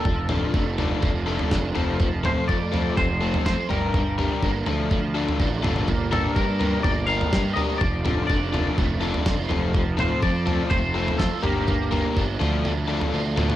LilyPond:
<<
  \new Staff \with { instrumentName = "Clean electric guitar" } { \time 4/4 \key g \minor \tempo 4 = 124 a'8 r2. r8 | r8 c''8 d''4 c''4 c''8 bes'8~ | bes'8 r2. r8 | r8 a'8 bes'4 d''8 f''4 ees''8 |
d''4 d''4 r2 | r8 c''8 d''4 c''4 a'8 g'8~ | g'8 r2. r8 | }
  \new Staff \with { instrumentName = "Overdriven electric guitar" } { \time 4/4 \key g \minor r8 <d d' f' a'>8 r8 <d d' f' a'>8 r8 <d d' f' a'>8 r8 <a c' f' a'>8 | r8 <a c' f' a'>8 r8 <a c' f' a'>8 r8 <a c' f' a'>8 r8 <g d' g' bes'>8 | r8 <g d' g' bes'>8 r8 <d d' f' a'>8 r8 <d d' f' a'>8 r8 <d d' f' a'>8 | r8 <g d' g' bes'>8 r8 <g d' g' bes'>8 r8 <g d' g' bes'>8 r8 <g d' g' bes'>8 |
r8 <d d' f' a'>8 r8 <d d' f' a'>8 r8 <d d' f' a'>8 r8 <a c' f' a'>8 | r8 <a c' f' a'>8 r8 <a c' f' a'>8 r8 <a c' f' a'>8 r8 <g d' g' bes'>8 | r8 <g d' g' bes'>8 r8 <d d' f' a'>8 r8 <d d' f' a'>8 r8 <d d' f' a'>8 | }
  \new Staff \with { instrumentName = "Overdriven electric guitar" } { \time 4/4 \key g \minor f8 f8 a8 f8 f8 a8 d'8 f8 | f8 f8 a8 f8 f8 a8 c'8 g8 | g8 g8 bes8 f8 f8 a8 d'8 a8 | bes8 bes8 d'8 bes8 bes8 d'8 g'8 d'8 |
f8 f8 d'8 f8 a8 d'8 f'8 f8 | f8 f8 c'8 f8 a8 c'8 f'8 bes8 | bes8 bes8 d'8 f8 a8 d'8 f'8 d'8 | }
  \new Staff \with { instrumentName = "Picked electric bass" } { \clef bass \time 4/4 \key g \minor f,,4 f,,4 f,,4 f,,8 f,,8~ | f,,4 f,4 f,,4 f,16 r16 g,,8~ | g,,4 g,,8 d,4. a,,8 g,,8 | g,,4 g,4 g,,4 g,8 r8 |
f,,4 f,,4 f,,4 f,,8 f,,8~ | f,,4 f,4 f,,4 f,16 r16 g,,8~ | g,,4 g,,8 d,4. d,4 | }
  \new DrumStaff \with { instrumentName = "Drums" } \drummode { \time 4/4 <bd tomfh>8 <tomfh toml>8 bd8 tomfh8 <bd tomfh>8. tomfh16 <bd sn>8 tomfh8 | <bd tomfh>8 <tomfh toml>8 bd8 tomfh8 <bd tomfh>8. tomfh16 <bd sn>8 tomfh8 | <bd tomfh>8 tomfh8 bd8 tomfh8 <bd tomfh>8. tomfh16 bd8 <tomfh toml>16 toml16 | <bd tomfh>8 <tomfh toml>8 bd8 tomfh8 <bd tomfh>8. tomfh16 <bd sn>8 tomfh8 |
<bd tomfh>8 <tomfh toml>8 bd8 tomfh8 <bd tomfh>8. tomfh16 <bd sn>8 tomfh8 | <bd tomfh>8 <tomfh toml>8 bd8 tomfh8 <bd tomfh>8. tomfh16 <bd sn>8 tomfh8 | <bd tomfh>8 tomfh8 bd8 tomfh8 tomfh8. tomfh16 r8 <tomfh toml>16 toml16 | }
>>